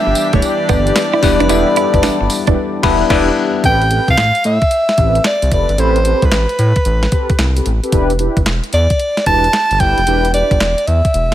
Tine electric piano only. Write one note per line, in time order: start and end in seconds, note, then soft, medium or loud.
0.00 0.25 G3 medium
0.00 0.25 B3 medium
0.00 0.25 D4 medium
0.00 0.25 E4 medium
0.00 0.25 B4 medium
1.22 1.46 G3 loud
1.22 1.46 B3 medium
1.22 1.46 D4 medium
1.22 1.46 E4 medium
1.22 1.46 B4 loud
1.49 2.39 G3 loud
1.49 2.39 B3 medium
1.49 2.39 D4 medium
1.49 2.39 E4 medium
1.49 2.39 A4 loud
2.83 3.03 G3 loud
2.83 3.03 B3 loud
2.83 3.03 D4 loud
2.83 3.03 E4 loud
2.83 3.03 B4 loud
3.10 3.30 G3 loud
3.10 3.30 B3 loud
3.10 3.30 D4 loud
3.10 3.30 E4 loud
3.10 3.30 B4 loud